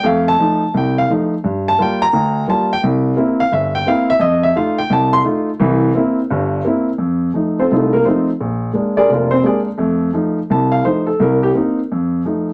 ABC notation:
X:1
M:4/4
L:1/8
Q:"Swing" 1/4=172
K:Fmix
V:1 name="Grand piano"
f a3 g f z2 | z a g b3 a g | z3 f =e g f e | e =e f g a c' z2 |
z8 | z3 [CFAc] [A,EFA] [B,B] [CFAc] z | z3 [D_ABd] [B,DFB] [Cc] [ABd] z | z4 a f c A |
B G z6 |]
V:2 name="Grand piano"
[F,,A,]2 [F,A,E] z C,,2 [F,A,E] z | G,,2 [G,B,F] z D,,2 [G,B,F] z | C,,2 [B,C=E] z G,,,2 [B,CE] z | F,,2 [A,EF] z C,,2 [A,EF] z |
[C,,=E,]2 [B,C=E] z [G,,,G,,]2 [B,CE] z | F,,2 [F,A,E] z C,,2 [F,A,E] z | B,,,2 [_A,B,D] z F,,,2 [A,B,D] z | [F,,A,]2 [F,A,E] z C,,2 [F,A,E] z |
C,,2 [B,CE] z F,,2 [F,A,E] z |]